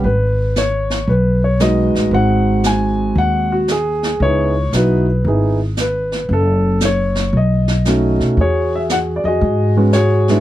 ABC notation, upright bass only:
X:1
M:4/4
L:1/8
Q:"Swing" 1/4=115
K:G#phr
V:1 name="Upright bass" clef=bass
G,,,4 B,,,3 A,,, | G,,,4 D,,4 | C,,2 B,,,2 G,,,4 | F,,,4 B,,,3 B,, |
[K:E] E,,3 =F,, G,,4 |]